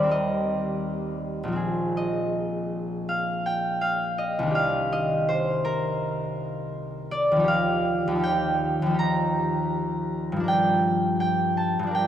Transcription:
0.00 1.55 D#2 soft
0.00 1.57 G3 soft
0.00 1.51 C4 soft
0.00 3.29 C5 medium
0.00 1.64 D5 medium
0.00 0.10 D#5 medium
0.00 0.21 G5 medium
0.07 3.97 A#4 soft
0.11 1.96 D#5 medium
1.43 4.51 A#1 soft
1.48 4.53 F3 soft
1.52 5.42 C4 soft
1.52 4.57 G#4 soft
1.97 4.17 D#5 medium
3.09 3.80 F5 medium
3.46 4.08 G5 medium
3.81 4.54 F5 medium
4.18 4.91 D#5 medium
4.39 7.44 C2 soft
4.43 7.46 D#3 soft
4.43 7.48 D4 soft
4.51 7.43 G4 soft
4.55 5.18 F5 medium
4.92 8.82 D#5 medium
5.29 7.52 C5 medium
5.65 9.55 A#4 medium
7.11 7.52 D5 medium
7.32 8.06 D#2 soft
7.36 8.10 F3 soft
7.36 8.15 D#4 soft
7.44 8.18 G4 soft
7.48 11.38 F5 medium
8.07 8.81 D#2 soft
8.07 8.85 F3 soft
8.16 8.89 D#4 soft
8.16 8.93 G4 soft
8.23 10.47 G5 medium
8.82 10.42 D#2 soft
8.86 10.35 F3 soft
8.86 10.46 D#4 soft
8.94 12.07 G4 soft
8.99 12.07 A#5 medium
10.32 11.78 G2 soft
10.36 11.82 F3 soft
10.36 11.86 D4 soft
10.44 11.90 A#4 soft
10.48 11.19 G5 medium
11.20 11.94 G5 medium
11.57 12.07 A5 medium
11.79 12.07 G2 soft
11.79 12.07 F3 soft
11.87 12.07 D4 soft
11.91 12.07 A#4 soft
11.91 12.07 G5 medium

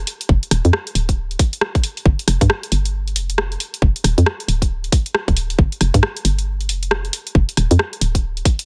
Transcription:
0.07 open hi-hat loud
0.21 closed hi-hat medium
0.29 0.40 F1 loud
0.29 kick loud
0.43 closed hi-hat medium
0.51 0.62 D#1 loud
0.51 cross-stick medium
0.51 open hi-hat loud
0.65 0.71 F2 loud
0.65 closed hi-hat medium
0.73 cross-stick loud
0.87 closed hi-hat medium
0.95 1.36 D1 medium
0.95 open hi-hat loud
1.09 kick medium
1.09 closed hi-hat medium
1.31 closed hi-hat soft
1.39 kick loud
1.39 open hi-hat loud
1.53 closed hi-hat medium
1.61 cross-stick loud
1.75 kick loud
1.75 closed hi-hat soft
1.84 open hi-hat loud
1.97 open hi-hat medium
2.06 2.16 G1 loud
2.06 kick loud
2.19 closed hi-hat soft
2.28 2.38 F1 loud
2.28 cross-stick medium
2.28 open hi-hat loud
2.41 2.48 G2 loud
2.41 kick loud
2.41 closed hi-hat medium
2.50 cross-stick loud
2.63 closed hi-hat medium
2.72 3.17 G1 medium
2.72 open hi-hat loud
2.85 closed hi-hat medium
3.08 closed hi-hat soft
3.16 3.57 F1 medium
3.16 open hi-hat loud
3.30 closed hi-hat medium
3.38 cross-stick loud
3.52 closed hi-hat soft
3.60 open hi-hat loud
3.74 closed hi-hat medium
3.82 3.92 F1 medium
3.82 kick loud
3.96 closed hi-hat soft
4.04 4.15 D#1 loud
4.04 cross-stick medium
4.04 open hi-hat loud
4.18 4.24 F2 loud
4.18 closed hi-hat medium
4.26 cross-stick loud
4.40 closed hi-hat medium
4.48 4.89 D1 medium
4.48 open hi-hat loud
4.62 kick medium
4.62 closed hi-hat medium
4.84 closed hi-hat soft
4.92 kick loud
4.92 open hi-hat loud
5.06 closed hi-hat medium
5.15 cross-stick loud
5.28 5.55 D1 loud
5.28 kick loud
5.28 closed hi-hat soft
5.37 open hi-hat loud
5.50 open hi-hat medium
5.59 5.69 G1 loud
5.59 kick loud
5.72 closed hi-hat soft
5.81 5.91 F1 loud
5.81 cross-stick medium
5.81 open hi-hat loud
5.94 6.01 G2 loud
5.94 kick loud
5.94 closed hi-hat medium
6.03 cross-stick loud
6.17 closed hi-hat medium
6.25 6.71 G1 medium
6.25 open hi-hat loud
6.39 closed hi-hat medium
6.61 closed hi-hat soft
6.69 7.10 F1 medium
6.69 open hi-hat loud
6.83 closed hi-hat medium
6.91 cross-stick loud
7.05 closed hi-hat soft
7.13 open hi-hat loud
7.27 closed hi-hat medium
7.35 7.45 F1 loud
7.35 kick loud
7.49 closed hi-hat medium
7.57 7.68 D#1 loud
7.57 cross-stick medium
7.57 open hi-hat loud
7.71 7.77 F2 loud
7.71 closed hi-hat medium
7.79 cross-stick loud
7.93 closed hi-hat medium
8.01 8.42 D1 medium
8.01 open hi-hat loud
8.15 kick medium
8.15 closed hi-hat medium
8.37 closed hi-hat soft
8.45 kick loud
8.45 open hi-hat loud
8.59 closed hi-hat medium

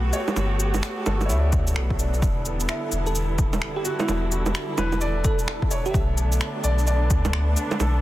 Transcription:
0.00 0.12 B1 medium
0.00 2.18 A3 medium
0.00 5.90 B3 medium
0.00 2.18 F#4 medium
0.00 2.19 G4 medium
0.00 8.01 A4 medium
0.00 2.25 B4 medium
0.13 0.58 C#5 medium
0.13 cabasa medium
0.13 shaker medium
0.28 low bongo medium
0.28 shaker soft
0.36 0.82 G1 loud
0.36 low bongo soft
0.36 shaker medium
0.60 cabasa medium
0.74 low bongo medium
0.74 shaker medium
0.83 finger snap loud
0.83 shaker medium
1.06 1.31 G1 loud
1.06 1.51 A4 medium
1.06 low bongo medium
1.06 cabasa medium
1.21 low bongo soft
1.21 shaker soft
1.26 1.77 D2 loud
1.26 1.74 E4 medium
1.26 1.67 C#5 medium
1.26 shaker medium
1.39 1.79 D5 medium
1.53 kick loud
1.53 cabasa medium
1.67 shaker medium
1.76 2.21 B1 medium
1.76 finger snap loud
1.90 kick medium
1.99 2.42 D4 medium
1.99 cabasa medium
1.99 shaker medium
2.14 shaker soft
2.22 2.68 E1 loud
2.22 5.91 D3 medium
2.22 5.91 G3 medium
2.22 5.91 E4 medium
2.22 kick loud
2.22 shaker medium
2.45 cabasa medium
2.60 shaker medium
2.69 3.13 E4 medium
2.69 finger snap loud
2.69 shaker medium
2.92 3.38 E1 loud
2.92 cabasa medium
3.06 3.31 A4 medium
3.06 shaker soft
3.15 shaker medium
3.38 3.60 D1 loud
3.38 kick loud
3.38 cabasa medium
3.53 low bongo medium
3.53 shaker medium
3.62 finger snap loud
3.76 4.01 G4 loud
3.85 4.29 F#4 medium
3.85 cabasa medium
3.85 shaker medium
3.99 4.32 E4 medium
3.99 low bongo medium
3.99 shaker soft
4.08 4.54 E1 loud
4.08 low bongo medium
4.08 shaker medium
4.32 4.76 F#4 medium
4.32 cabasa medium
4.46 low bongo medium
4.46 shaker medium
4.55 finger snap loud
4.55 shaker medium
4.78 5.23 E1 loud
4.78 5.23 E4 medium
4.78 5.23 B4 medium
4.78 low bongo medium
4.78 cabasa medium
4.92 low bongo soft
4.92 shaker soft
5.01 5.46 D5 medium
5.01 shaker medium
5.24 5.71 A4 medium
5.24 kick loud
5.24 cabasa medium
5.39 shaker medium
5.48 finger snap loud
5.62 kick medium
5.71 6.14 C#5 medium
5.71 cabasa medium
5.71 shaker medium
5.86 6.00 G4 medium
5.86 shaker soft
5.91 6.40 B1 loud
5.91 8.01 D3 medium
5.91 8.01 A3 medium
5.91 8.01 B3 medium
5.91 8.01 D4 medium
5.91 6.32 E5 medium
5.91 kick loud
5.91 shaker medium
6.18 cabasa medium
6.32 shaker medium
6.41 finger snap loud
6.41 shaker medium
6.64 7.09 B1 loud
6.64 6.86 D5 medium
6.64 cabasa medium
6.79 shaker soft
6.87 7.32 D5 medium
6.87 shaker medium
7.10 7.56 D2 medium
7.10 kick loud
7.10 cabasa medium
7.25 low bongo medium
7.25 shaker medium
7.33 finger snap loud
7.57 cabasa medium
7.57 shaker medium
7.71 low bongo medium
7.71 shaker soft
7.80 8.01 B1 loud
7.80 8.01 A4 medium
7.80 low bongo medium
7.80 shaker medium

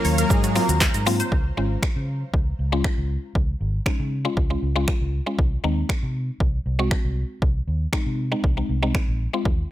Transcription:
0.00 0.30 F#3 medium
0.00 1.30 F#3 medium
0.00 0.30 A#3 medium
0.00 0.30 C#4 medium
0.00 0.30 F4 medium
0.00 0.29 C#5 medium
0.00 1.30 F5 medium
0.00 1.30 A#5 loud
0.05 0.23 D#2 loud
0.05 0.18 C#5 loud
0.05 open hi-hat medium
0.05 shaker medium
0.05 shaker soft
0.18 0.29 A#3 medium
0.18 0.28 A#4 medium
0.18 0.30 F5 medium
0.18 closed hi-hat medium
0.18 shaker medium
0.30 0.58 G#2 loud
0.30 0.52 G#3 medium
0.30 0.43 F#4 medium
0.30 0.52 G#4 medium
0.30 1.31 C5 medium
0.30 kick loud
0.30 shaker medium
0.44 0.54 F#4 loud
0.44 closed hi-hat medium
0.44 shaker soft
0.44 shaker medium
0.55 0.92 F#3 medium
0.55 0.92 A#3 medium
0.55 0.68 A#3 medium
0.55 0.92 C4 medium
0.55 0.92 F4 loud
0.55 0.68 F#4 medium
0.55 0.67 A#4 medium
0.55 open hi-hat medium
0.55 shaker medium
0.55 shaker soft
0.69 0.87 D#2 loud
0.69 0.80 F#4 medium
0.69 closed hi-hat medium
0.69 shaker medium
0.81 0.94 F5 medium
0.81 kick loud
0.81 snare medium
0.81 clap loud
0.81 shaker medium
0.94 1.21 G#2 loud
0.94 1.06 A#5 medium
0.94 closed hi-hat soft
0.94 shaker soft
0.94 shaker medium
1.06 1.32 F#3 loud
1.06 1.32 A#3 loud
1.06 1.32 C4 loud
1.06 1.32 F4 loud
1.06 open hi-hat medium
1.06 shaker soft
1.06 shaker medium
1.20 1.31 C5 loud
1.20 closed hi-hat medium
1.20 shaker medium
1.32 1.50 C#2 medium
1.32 kick loud
1.57 1.75 G#1 medium
1.57 2.29 G#3 medium
1.57 2.29 C#4 medium
1.57 2.30 F4 medium
1.83 finger snap loud
1.83 kick loud
1.96 2.23 C#3 medium
2.34 2.52 C#2 loud
2.34 kick loud
2.59 2.87 C#2 medium
2.72 3.44 G#3 medium
2.72 3.44 C#4 medium
2.72 3.44 F4 loud
2.84 finger snap loud
2.84 kick loud
2.98 3.16 C#2 medium
3.35 3.53 C#2 medium
3.35 kick loud
3.61 3.79 G#1 medium
3.86 4.13 G#3 medium
3.86 4.13 C#4 medium
3.86 4.13 D#4 loud
3.86 finger snap loud
3.86 kick loud
4.00 4.26 C#3 medium
4.25 4.42 G#3 medium
4.25 4.43 C#4 medium
4.25 4.43 F4 loud
4.37 4.55 C#2 loud
4.37 kick loud
4.50 4.68 G#3 medium
4.50 4.68 C#4 medium
4.50 4.68 F4 medium
4.62 4.90 C#2 medium
4.76 5.11 G#3 loud
4.76 5.11 C#4 medium
4.76 5.11 F4 loud
4.88 finger snap loud
4.88 kick loud
5.01 5.19 C#2 medium
5.26 5.39 G#3 medium
5.26 5.39 C#4 medium
5.26 5.39 F4 loud
5.39 5.57 C2 medium
5.39 kick loud
5.64 5.82 D#2 medium
5.64 6.36 G#3 medium
5.64 6.36 C4 medium
5.64 6.36 D#4 loud
5.89 finger snap loud
5.89 kick loud
6.03 6.29 C3 medium
6.40 6.58 C2 loud
6.40 kick loud
6.66 6.93 C2 medium
6.79 7.51 G#3 loud
6.79 7.51 C4 medium
6.79 7.51 F#4 loud
6.91 finger snap loud
6.91 kick loud
7.05 7.23 C2 medium
7.42 7.60 C2 medium
7.42 kick loud
7.68 7.86 D#2 medium
7.93 8.20 G#3 medium
7.93 8.20 C4 medium
7.93 8.20 D#4 loud
7.93 finger snap loud
7.93 kick loud
8.06 8.33 C3 medium
8.32 8.49 G#3 medium
8.32 8.49 C4 medium
8.32 8.49 D#4 loud
8.44 8.62 C2 loud
8.44 kick loud
8.57 8.75 G#3 medium
8.57 8.75 C4 medium
8.57 8.75 D#4 medium
8.69 8.97 C2 medium
8.83 9.18 G#3 loud
8.83 9.18 C4 medium
8.83 9.18 D#4 loud
8.95 finger snap loud
8.95 kick loud
9.08 9.26 A#1 medium
9.33 9.45 G#3 medium
9.33 9.46 C4 medium
9.33 9.46 F4 loud
9.45 9.63 D#2 medium
9.45 kick loud

